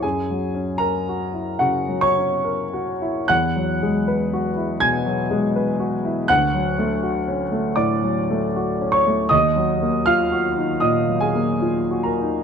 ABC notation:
X:1
M:4/4
L:1/8
Q:1/4=78
K:F#phr
V:1 name="Grand piano"
[^G^g]2 [^A^a]2 [Ff] [cc']3 | [ff']4 [^g^g']4 | [ff']4 [dd'] z2 [cc'] | [K:D#m] [dd']2 [ee']2 [dd'] [Gg]2 [Aa] |]
V:2 name="Grand piano"
(3F,, F, C- (3C F E (3C, F, C (3^A F E | (3E,, F, ^G, (3B F E (3B,, F, G, (3B F E | (3D,, F, A, (3F C A, (3A,, F, A, (3F C A, | [K:D#m] (3D,, F, A, (3E F D (3A,, F, A, (3E F D |]